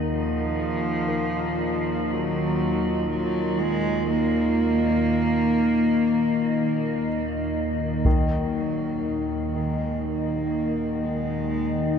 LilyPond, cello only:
\new Staff \with { instrumentName = "Cello" } { \clef bass \time 4/4 \key ees \minor \tempo 4 = 60 f2 ges4 ges8 aes8 | bes2. r4 | ges4. aes8 bes4 aes4 | }